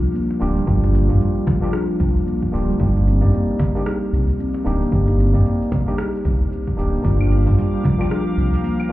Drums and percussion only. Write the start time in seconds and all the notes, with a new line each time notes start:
0.04 shaker
0.15 shaker
0.31 cajon slap
0.41 shaker
0.57 shaker
0.67 kick, shaker
0.84 cajon slap, shaker
0.94 cajon slap, shaker
1.10 kick, shaker
1.21 shaker
1.47 kick, cajon bass, cajon slap, shaker
1.63 shaker
1.73 cross-stick, shaker
2.00 kick, shaker
2.17 shaker
2.27 shaker
2.42 kick
2.54 shaker
2.70 shaker
2.80 kick, shaker
2.97 shaker
3.07 shaker
3.22 kick, shaker
3.34 shaker
3.59 kick, cajon bass, cajon slap, shaker
3.76 shaker
3.86 cross-stick, shaker
4.13 shaker
4.29 shaker
4.40 shaker
4.54 cajon slap
4.66 shaker
4.82 shaker
4.92 kick, shaker
5.08 cajon slap, shaker
5.19 cajon slap, shaker
5.35 kick, shaker
5.46 shaker
5.62 shaker
5.72 cajon bass, kick, cajon slap, shaker
5.88 shaker
5.98 cross-stick, shaker
6.15 shaker
6.25 kick, shaker
6.41 shaker
6.52 shaker
6.67 kick, shaker
6.79 shaker
6.94 shaker
7.04 kick, open hi-hat, shaker
7.21 claves, shaker
7.32 shaker
7.47 kick, open hi-hat, shaker
7.58 open hi-hat, shaker
7.84 kick, cajon bass, cajon slap, shaker
8.01 open hi-hat, claves, shaker
8.11 cross-stick, open hi-hat, shaker
8.38 shaker
8.54 open hi-hat, shaker
8.64 open hi-hat, shaker
8.80 cajon slap, claves